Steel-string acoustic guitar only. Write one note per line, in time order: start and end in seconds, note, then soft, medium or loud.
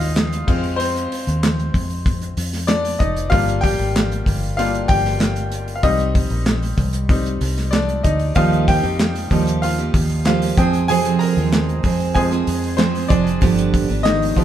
8.35 8.83 D#3 medium
8.35 8.83 F3 medium
8.35 8.83 A#3 medium
8.35 8.82 D#4 loud
8.35 8.81 G4 loud
8.82 9.30 A#3 soft
8.82 9.31 D#4 medium
8.82 9.30 G4 soft
9.30 9.78 F3 medium
9.30 9.78 A#3 medium
9.30 9.78 D#4 medium
9.30 9.77 G4 medium
9.78 10.25 A#3 medium
9.78 10.26 D#4 medium
9.78 10.26 G4 medium
10.26 10.56 F3 medium
10.26 10.58 A#3 medium
10.26 10.58 D#4 medium
10.26 10.58 G4 medium
10.57 10.89 F3 medium
10.57 10.89 G#3 medium
10.57 10.90 C4 medium
10.57 10.90 G#4 medium
10.89 11.36 F2 loud
10.89 11.37 C3 loud
10.89 11.37 F3 loud
10.89 11.37 G#3 loud
10.89 11.36 C4 medium
10.89 11.35 G#4 loud
11.36 11.82 F3 medium
11.36 11.82 G#3 medium
11.36 11.83 C4 medium
11.36 11.84 G#4 medium
11.83 12.31 F3 medium
11.83 12.31 G#3 medium
11.83 12.30 C4 medium
11.83 12.30 G#4 medium
12.31 12.76 F3 medium
12.31 12.77 G#3 soft
12.31 12.78 C4 medium
12.31 12.78 G#4 medium
12.77 13.08 F3 medium
12.77 13.09 G#3 medium
12.77 13.09 C4 medium
12.77 13.10 G#4 medium
13.09 13.41 F3 medium
13.09 13.41 G#3 medium
13.09 13.42 C4 medium
13.09 13.42 G#4 medium
13.41 13.88 G2 medium
13.41 13.89 D3 medium
13.41 13.89 F3 loud
13.41 13.89 B3 medium
13.41 13.88 D4 loud
13.41 13.87 G4 loud
13.88 14.34 F3 soft
13.88 14.35 B3 medium
13.88 14.35 D4 medium
13.88 14.36 G4 medium
14.35 14.44 F3 medium
14.35 14.44 B3 medium
14.35 14.44 D4 medium
14.35 14.44 G4 medium